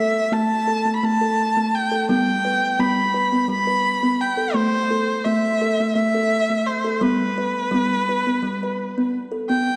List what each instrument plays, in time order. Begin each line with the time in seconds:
Already playing: kalimba A3 A4, erhu E5
0.32 kalimba A3, erhu A5
0.68 kalimba A4
0.85 kalimba A3
0.96 erhu B5
1.03 kalimba A3, erhu A5
1.21 kalimba A4
1.57 kalimba A3
1.75 erhu G5
1.92 kalimba A4
2.09 kalimba G3 B3, erhu G5
2.45 kalimba B4
2.79 kalimba G3 B3, erhu B5
3.14 kalimba B4
3.32 kalimba B3
3.48 kalimba G3, erhu B5
3.67 kalimba B4
4.03 kalimba B3
4.21 erhu G5
4.37 kalimba A4
4.54 kalimba A3, erhu C5
4.90 kalimba A4
5.24 kalimba A3, erhu E5
5.62 kalimba A4
5.80 kalimba A3
5.95 kalimba A3, erhu E5
6.15 kalimba A4
6.50 kalimba A3
6.67 erhu C5
6.84 kalimba A4
7.01 kalimba G3 B3, erhu B4
7.38 kalimba B4
7.71 kalimba G3 B3
8.09 kalimba B4
8.27 kalimba B3
8.42 kalimba G3
8.63 kalimba B4
8.98 kalimba B3
9.32 kalimba A4
9.50 kalimba B3, erhu G5